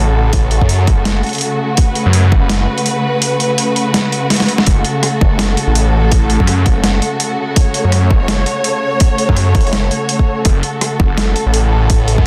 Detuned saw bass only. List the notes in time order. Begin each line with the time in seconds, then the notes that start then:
Already playing: A1
0.62 F#2
0.88 F#1
2.06 F#2
2.32 F#1
4.67 F#1
5.22 F#1
5.67 A1
6.40 F#2
6.66 F#1
7.84 F#2
8.11 F#1
9.29 F#2
9.55 F#1
10.45 F#1
11.00 F#1
11.46 A1
12.18 F#2